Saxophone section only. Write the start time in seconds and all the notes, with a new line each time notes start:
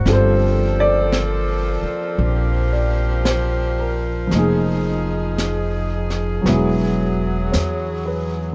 Already playing: C4
0.06 F3 A#3 A4
2.20 G4
4.32 D#4 G#4
6.45 F#3